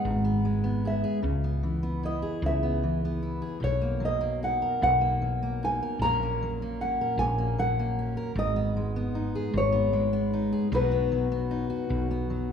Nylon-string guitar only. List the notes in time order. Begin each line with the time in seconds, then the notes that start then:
Already playing: F#5
0.87 E5
2.05 D#5
2.46 E5
3.64 C#5
4.05 D#5
4.44 F#5
4.83 F#5
5.64 G#5
6.02 A#5
6.81 F#5
7.19 G#5
7.59 F#5
8.39 D#5
9.57 C#5
10.75 B4